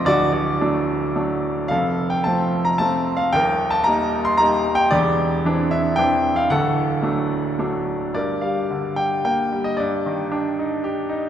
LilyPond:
<<
  \new Staff \with { instrumentName = "Grand piano" } { \time 3/4 \key g \minor \tempo 4 = 112 << { d''8 d''2 r8 | f''8. g''16 a''8. bes''16 a''8. f''16 | g''8. a''16 bes''8. c'''16 bes''8. g''16 | d''4 r8 e''8 g''8. f''16 |
fis''2~ fis''8 r8 | d''8 f''4 g''8 g''8. ees''16 | d''4 r2 | } \\ { fis'8 fis'2 r8 | a'4. r4. | bes'4. r4. | g'4. r4. |
a'2~ a'8 r8 | bes'4. r4. | r2. | } >> }
  \new Staff \with { instrumentName = "Grand piano" } { \clef bass \time 3/4 \key g \minor <d,, d,>4 <fis a d'>4 <fis a d'>4 | <f,, f,>4 <f a c'>4 <f a c'>4 | <ees,, ees,>4 <g bes ees'>4 <g bes ees'>4 | <e,, e,>4 <e c' d'>4 <e c' d'>4 |
<d,, d,>4 <fis a d'>4 <fis a d'>4 | g,8 g8 d8 g8 bes8 g8 | g,8 ees8 d'8 ees'8 g'8 ees'8 | }
>>